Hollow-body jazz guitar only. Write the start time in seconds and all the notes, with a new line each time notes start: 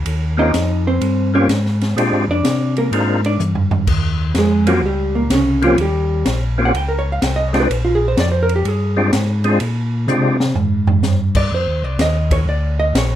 0.39 D#4 D#5
0.87 C4 C5
1.35 C#4 C#5
2.31 D4 D5
2.78 A#3 A#4
3.26 D4 D5
4.38 G#3 G#4
4.68 F#3 F#4
4.86 G3 G4
5.15 A#2 A#3
5.34 C#3 C#4
5.64 F3 F4
5.81 G3 G4
6.65 F#5
6.77 G5
6.88 A#4
6.99 C#5
7.12 F5
7.24 G5
7.36 D#5
7.48 C#5
7.60 B4
7.72 C5
7.85 F4
7.95 G#4
8.08 C5
8.20 D5
8.32 C5
8.43 A#4
8.56 G4
8.68 G#4
11.37 D5
11.54 C5
11.84 D5
12.01 D#5
12.33 C#5
12.49 D5
12.80 D#5
12.98 C#5